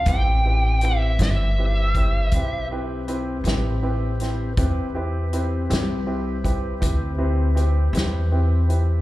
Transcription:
<<
  \new Staff \with { instrumentName = "Lead electric guitar" } { \time 12/8 \key a \minor \tempo 4. = 53 g''4 e''8 e''2 r2 r8 | r1. | }
  \new Staff \with { instrumentName = "Tonewheel organ" } { \time 12/8 \key a \minor <c' g' b'>1. | <c' g' b'>1. | }
  \new Staff \with { instrumentName = "Grand piano" } { \time 12/8 \key a \minor <c' e' g' b'>8 <c' e' g' b'>8 <c' e' g' b'>8 <c' e' g' b'>8 <c' e' g' b'>8 <c' e' g' b'>8 <c' e' g' b'>8 <c' e' g' b'>8 <c' e' g' b'>8 <c' e' g' b'>8 <c' e' g' b'>8 <c' e' g' b'>8 | <c' e' g' b'>8 <c' e' g' b'>8 <c' e' g' b'>8 <c' e' g' b'>8 <c' e' g' b'>8 <c' e' g' b'>8 <c' e' g' b'>8 <c' e' g' b'>8 <c' e' g' b'>8 <c' e' g' b'>8 <c' e' g' b'>8 <c' e' g' b'>8 | }
  \new Staff \with { instrumentName = "Upright bass" } { \clef bass \time 12/8 \key a \minor a,,4. g,,4. b,,4. a,,4. | e,4. c,4. d,4. e,4. | }
  \new DrumStaff \with { instrumentName = "Drums" } \drummode { \time 12/8 <hh bd>4 hh8 <hh sn>4 <hh bd>8 <hh bd>4 hh8 <hh sn>4 <hh sn>8 | <hh bd>4 hh8 <hh sn>4 <hh bd>8 <hh bd>4 hh8 <hh sn>4 hh8 | }
>>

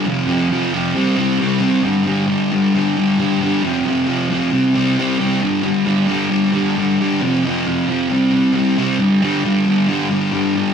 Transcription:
\new Staff \with { instrumentName = "Distorted electric guitar" } { \clef bass \time 4/4 \key f \lydian \tempo 4 = 134 <f, c f>8 <f, c f>8 <f, c f>8 <f, c f>8 <c g c'>8 <c g c'>8 <c g c'>8 <c g c'>8 | <g, d g>8 <g, d g>8 <g, d g>8 <g, d g>8 <g, d g>8 <g, d g>8 <g, d g>8 <g, d g>8 | <f, c f>8 <f, c f>8 <f, c f>8 <f, c f>8 <c g c'>8 <c g c'>8 <c g c'>8 <c g c'>8 | <g, d g>8 <g, d g>8 <g, d g>8 <g, d g>8 <g, d g>8 <g, d g>8 <g, d g>8 <g, d g>8 |
<f, c f>8 <f, c f>8 <f, c f>8 <f, c f>8 <c g c'>8 <c g c'>8 <c g c'>8 <c g c'>8 | <g, d g>8 <g, d g>8 <g, d g>8 <g, d g>8 <g, d g>8 <g, d g>8 <g, d g>8 <g, d g>8 | }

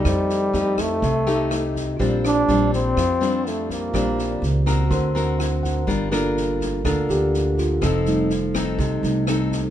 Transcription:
<<
  \new Staff \with { instrumentName = "Tine electric piano" } { \time 4/4 \key bes \major \tempo 4 = 124 << { r1 | r1 | r4. bes''8 c'''8 bes''8 fis''8 fis''8 | \key g \minor r8 bes'4. a'8 g'4 f'8 |
a'4. r2 r8 | } \\ { <g' a' c'' ees''>1 | <f' g' c'' d''>1 | <f' g' c'' d''>2 <fis' bes' c''>2 | r8 <bes f' a'>2.~ <bes f' a'>8 |
r8 <g a ees'>4. r8 <g a ees'>8 r4 | } >> }
  \new Staff \with { instrumentName = "Nylon-string guitar" } { \time 4/4 \key bes \major << { <a ees' g'>4 <a ees' g'>4 r8 <a ees' g'>4. | <g c' d'>4 <g c' d'>4 r8 <g c' d'>4. | <g c' d'>4 r8 <c' ges' bes'>4 <c' fis' bes'>4. | \key g \minor <d' f' bes'>8 <d' f' bes'>4. <d' f' bes'>2 |
<c' ees' a'>4 r8 <c' ees' a'>4. <c' ees' a'>8 r8 | } \\ { f2 c2 | bes,2 f2 | bes,2 d2 | g2 d2 |
f2 c2 | } >> }
  \new Staff \with { instrumentName = "Trombone" } { \time 4/4 \key bes \major g4. a2 r8 | r8 d'4 c'4. a8 bes8~ | bes4. r2 r8 | \key g \minor r1 |
r1 | }
  \new Staff \with { instrumentName = "Upright bass" } { \clef bass \time 4/4 \key bes \major f,4 f,4 c,2 | bes,,4 bes,,4 f,2 | bes,,4 des,4 d,2 | \key g \minor g,,2 d,8 d,4. |
f,,2 c,8 c,4. | }
  \new DrumStaff \with { instrumentName = "Drums" } \drummode { \time 4/4 <bd ss sn>8 sn8 sn8 <bd ss sn>8 <bd sn>8 sn8 <ss sn>8 <bd sn>8 | <bd sn>8 <ss sn>8 sn8 <bd sn>8 <bd ss sn>8 sn8 sn8 <bd sn>8 | <bd ss sn>8 sn8 sn8 <bd ss sn>8 <bd sn>8 sn8 <ss sn>8 <bd sn>8 | <bd sn>8 <ss sn>8 sn8 <bd sn>8 <bd ss sn>8 sn8 sn8 <bd sn>8 |
<bd ss sn>8 sn8 sn8 <bd ss sn>8 <bd sn>8 sn8 <ss sn>8 <bd sn>8 | }
>>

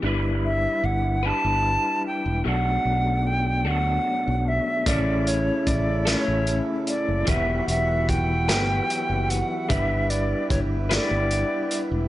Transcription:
<<
  \new Staff \with { instrumentName = "Flute" } { \time 6/8 \key g \lydian \tempo 4. = 50 r8 e''8 fis''8 a''4 g''8 | fis''4 g''8 fis''4 e''8 | d''8 cis''8 d''8 cis''8 r8 d''8 | e''8 e''8 g''4. fis''8 |
e''8 d''8 cis''8 d''4 r8 | }
  \new Staff \with { instrumentName = "Clean electric guitar" } { \time 6/8 \key g \lydian <g d' e' b'>4. <g d' e' b'>4. | <b, fis a d' a'>4. <b, fis a d' a'>4. | <a cis' e' a'>4. <a cis' e' a'>4. | <e fis b g' b'>4. <e fis b g' b'>4. |
<g d' e' b'>4. <g d' e' b'>4. | }
  \new Staff \with { instrumentName = "Harmonium" } { \time 6/8 \key g \lydian r2. | r2. | <a e'>2. | fis'2. |
b2. | }
  \new Staff \with { instrumentName = "Harmonium" } { \clef bass \time 6/8 \key g \lydian r2. | r2. | cis2. | e'2.~ |
e'2. | }
  \new Staff \with { instrumentName = "Fingered electric bass" } { \clef bass \time 6/8 \key g \lydian g,,4 g,,8. g,,8 r8 e,,16 | b,,8 b,,4 d,8 r16 b,,8 r16 | a,,4 a,,8. a,,8 r8 fis,,16 | e,,8 e,,4 g,,8 r16 fis,,8 r16 |
g,,4 g,,8. g,,8 r8 e,,16 | }
  \new DrumStaff \with { instrumentName = "Drums" } \drummode { \time 6/8 r4. r4. | r4. r4. | <hh bd>8 hh8 <hh bd>8 <hh sn>8 hh8 hh8 | <hh bd>8 hh8 <hh bd>8 <hh sn>8 hh8 hh8 |
<hh bd>8 hh8 <hh bd>8 <hh sn>8 hh8 hh8 | }
>>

